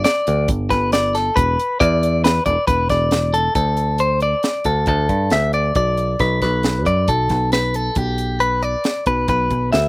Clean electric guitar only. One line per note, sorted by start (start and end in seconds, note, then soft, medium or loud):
0.05 0.49 D5 medium
0.70 0.93 B4 medium
0.93 1.15 D5 medium
1.15 1.37 A4 medium
1.36 1.80 B4 medium
1.80 2.24 D5 medium
2.24 2.45 B4 medium
2.46 2.67 D5 medium
2.67 2.90 B4 medium
2.90 3.34 D5 medium
3.34 3.54 A4 medium
3.55 4.00 A4 medium
4.00 4.22 C5 medium
4.23 4.66 D5 medium
4.66 4.87 A4 medium
4.88 5.32 A4 medium
5.32 5.53 E5 medium
5.54 5.75 D5 medium
5.76 6.20 D5 medium
6.20 6.41 B4 medium
6.42 6.87 B4 medium
6.86 7.09 D5 medium
7.09 7.52 A4 medium
7.53 7.75 B4 medium
7.75 7.98 A4 medium
7.98 8.41 G4 medium
8.40 8.63 B4 medium
8.63 9.07 D5 medium
9.07 9.28 B4 medium
9.29 9.72 B4 medium
9.72 9.88 E5 medium